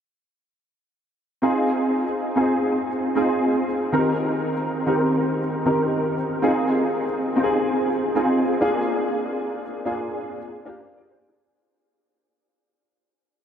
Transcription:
1.42 C4 D#4 F4 G#4
2.36 C4 D#4 F4 G#4
3.15 C4 D#4 F4 G#4
3.92 D#3 C4 D#4 G4 A#4
4.86 D#3 C4 D#4 G4 A#4
5.65 D#3 C4 D#4 G4 A#4
6.42 C4 D#4 F4 G#4
7.36 C4 D#4 F4 G4
7.43 G#4
8.15 C4 D#4 F4 G#4
8.60 A#3 D4 F4 G#4
9.85 A#3 D4 F4 G#4
10.65 A#3 D4 F4 G4
10.80 C5 F5
10.97 G#4 D5
11.11 G4 C5
11.28 D4 G#4

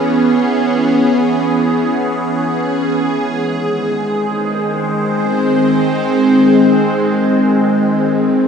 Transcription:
Already playing: E3 B3 C#4 G#4 C#5
2.90 D#3
2.97 G#3
3.30 C5
3.66 C4

